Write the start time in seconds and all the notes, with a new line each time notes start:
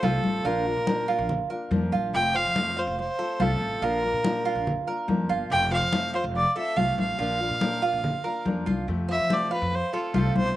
0.03 C2 C3 F3 A3 C4 F4 A4, high conga
0.24 A1, high conga
0.44 A#1 F3 A#3 D4 F4 A#4, high conga
0.66 A#3 D4 F4, high conga
0.76 A#2
0.87 F3 A#3 D4 F4 A#4, high conga
1.08 A#3 D4 F4, high conga
1.18 A#1
1.29 muted nylon-string guitar stroke, high conga, low conga
1.50 A#3 D4 F4 A#4, high conga
1.71 F2 F3 A#3 D4 F4, high conga
1.92 A#1 F4, high conga
2.13 F1 C3 F3 A3 C4 F4 G5, high conga
2.34 A3 C4 F4 C5 F5, high conga
2.45 F2
2.56 C3 F3 A3 C4 F4, high conga
2.77 A3 C4 F4 C5 F5, high conga
2.87 F1
2.98 C5, muted nylon-string guitar stroke, high conga
3.19 A3 C4 F4 A4, high conga
3.40 C2 C3 F3 A3 C4 F4 A4, high conga
3.61 A1
3.82 A#1 F3 A#3 D4 F4 A#4, high conga
4.02 A#3 D4 F4, high conga
4.13 A#2
4.23 F3 A#3 D4 F4 A#4, high conga
4.44 A#3 D4 F4, high conga
4.55 A#1
4.66 muted nylon-string guitar stroke, high conga, low conga
4.87 A#3 D4 F4 A#4, high conga
5.08 F2 F3 A#3 D4 F4, high conga
5.29 G1 F4
5.50 F1 C3 F3 A3 C4 F4 G5, high conga
5.71 A3 C4 F4 C5 F5, high conga
5.82 F2
5.93 C3 F3 A3 C4 F4, high conga
6.14 A3 C4 F4 C5 F5, high conga
6.24 F1
6.35 D5, muted nylon-string guitar stroke, high conga
6.56 A3 C4 F4 A4 E5, high conga
6.77 C2 C3 F3 A3 C4 F4 F5, high conga
6.98 A1 F5, high conga
7.19 A#1 F3 A#3 D4 F4, high conga
7.40 A#3 D4 F4, high conga
7.50 A#2
7.61 F3 A#3 D4 F4 A#4, high conga
7.82 A#3 D4 F4, high conga
7.93 A#1
8.03 muted nylon-string guitar stroke, high conga, low conga
8.24 A#3 D4 F4 A#4, high conga
8.45 F2 F3 A#3 D4 F4, high conga
8.66 C2 F4, high conga
8.87 F2 C3 F3 A3 C4 F4, high conga
9.09 A3 C4 F4 C5 E5, high conga
9.19 F3
9.30 C3 F3 A3 C4 F4 D5, high conga
9.51 A3 C4 F4 B4 F5, high conga
9.62 F2
9.72 C5, muted nylon-string guitar stroke, high conga
9.93 A3 C4 F4 A4, high conga
10.13 C2 C3 F3 A3 C4 F4, high conga
10.18 A4
10.36 B1 C5, high conga